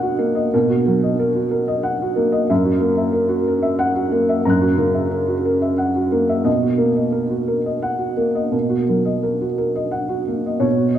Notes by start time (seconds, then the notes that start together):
Already playing: B2 A#3 F#4 A#4 D#5 F#5
0.02 F#4
0.19 A#3 A#4
0.35 D#5
0.54 B2 A#4
0.70 F#4
0.86 F#3 A#4
1.03 D#5
1.19 A#4
1.35 F#4
1.51 A#4
1.68 D#5
1.83 F#5
2.02 F#4
2.16 A#3 A#4
2.32 D#5
2.50 F#2 E5
2.65 F#4
2.80 A#3 A#4
2.97 E5
3.13 A#4
3.28 F#4
3.48 A#4
3.62 E5
3.79 F#5
3.95 F#4
4.11 A#3 A#4
4.29 E5
4.45 F#2 A#4 A#5
4.50 F#6
4.61 F#4
4.77 C#3 A#4
4.94 E5
5.11 A#4
5.28 F#4
5.45 A#4
5.62 E5
5.78 F#5
5.96 F#4
6.12 A#3 A#4
6.29 E5
6.45 B2 D#5
6.63 F#4
6.78 A#3 A#4
6.96 D#5
7.12 A#4
7.30 F#4
7.48 A#4
7.66 D#5
7.82 F#5
7.98 F#4
8.17 A#3 A#4
8.35 D#5
8.52 B2 A#4
8.70 F#4
8.89 F#3 A#4
9.05 D#5
9.23 A#4
9.41 F#4
9.58 A#4
9.76 D#5
9.91 F#5
10.09 F#4
10.28 A#3 A#4
10.46 D#5
10.60 B2 C#5
10.77 F#4
10.95 D#5